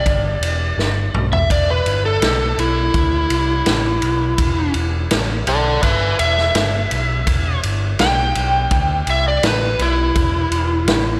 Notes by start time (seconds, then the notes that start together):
Already playing: D5
0.06 G1, kick, ride
0.41 E1, ride
0.78 G1, snare
1.14 B1, mid tom
1.33 E5, floor tom
1.50 E1 D5, kick, ride
1.70 B4
1.86 G1, ride
2.06 A4
2.22 B1, snare, ride
2.58 B1 E4, ride
2.94 D2, kick, ride
3.30 C2, ride
3.66 A1, snare, ride
4.02 B1, ride
4.38 E1, kick, ride
4.74 E1, ride
5.11 A1, snare, ride
5.47 B1 A4 D5, ride
5.83 G1 B4 E5, kick, ride
6.19 E1 E5, ride
6.38 snare
6.55 G1, snare, ride
6.91 B1, ride
7.27 E1, kick, ride
7.63 G1, ride
7.99 B1 G5, snare, ride
8.35 B1, ride
8.71 D2, kick, ride
9.07 C2 E5, ride
9.28 D5
9.43 A1 B4, snare, ride
9.79 B1 E4, ride
10.15 E1, kick, ride
10.51 E1, ride
10.86 A1, snare, ride